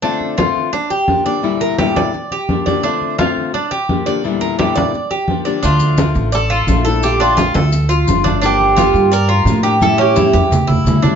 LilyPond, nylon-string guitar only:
\new Staff \with { instrumentName = "Nylon-string guitar" } { \time 4/4 \key d \minor \tempo 4 = 172 <d a c' f'>4 <d a c' f'>4 r4 <f bes d' g'>8 <d f bes d' g'>8 | <e, bes, d g d' e'>4 <e, bes, d g d' e'>4 r4 <f bes d' g'>8 <d f bes d' g'>8 | <d a c' f'>4 <d a c' f'>4 r4 <f bes d' g'>8 <d f bes d' g'>8 | <e, bes, d g d' e'>4 <e, bes, d g d' e'>4 r4 <f bes d' g'>8 <d f bes d' g'>8 |
<d f a d'>4 <d f a d'>4 r4 <f a d' e'>8 <f a d' e'>8 | <d a d' f'>4 <d a d' f'>4 r4 <d a d' f'>8 <a d' f'>8 | <d f bes d' g'>4 <d f bes d' g'>4 r4 <f bes d' g'>8 <f bes d' g'>8 | <e g cis' e'>4 <e g cis' e'>4 r4 <e g cis' e'>8 <g cis' e'>8 | }